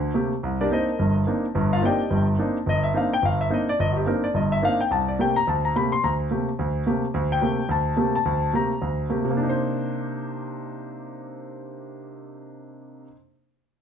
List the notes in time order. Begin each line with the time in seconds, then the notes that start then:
0.14 C3 A3 A#3 G4
0.43 C2
0.61 D4 G4 A#4 D5
0.71 A#3 C4 D4 D#4 A#4 C5 D#5
0.99 G1 G2
1.27 A#3 C4 D4 D#4
1.55 G1 G2
1.73 F4 F5
1.82 A#3 C4 D4 D#4 G4 D5 G5
1.86 D#5
2.10 G1 G2
2.39 A#3 C4 D4 D#4
2.66 G1 D#5
2.84 E5
2.94 A#3 C4 D4 D#4 F5
3.13 G5
3.22 G1 F5
3.41 E5
3.50 A#3 C4 D4 D#4 D#5
3.69 D5
3.79 G1 D#5
3.92 F#4
3.96 G4
4.06 A#3 C4 D4 D#4 A#4
4.24 D5
4.34 G1 G2 D#5
4.52 E5
4.62 A#3 C4 D4 D#4 F5
4.81 G5
4.91 C2 A5
5.08 D5
5.19 C3 A3 A#3 G4 G5
5.36 A#5
5.47 D2 A5
5.65 A#5
5.75 C3 A3 A#3 G4 B5
5.92 C6
6.04 D2 A#5
6.31 C3 A3 A#3 G4
6.59 D2
6.86 C3 A3 A#3 G4
7.14 D2
7.32 G5
7.41 C3 A3 A#3 G4
7.69 D2 A5
7.97 C3 A3 A#3 G4
8.16 A5
8.25 D2
8.53 C3 A3 A#3 G4 A#5
8.82 D2
9.09 C3 A3 A#3 G4
9.25 C3
9.31 A#3
9.37 D4
9.43 D#4
9.49 C5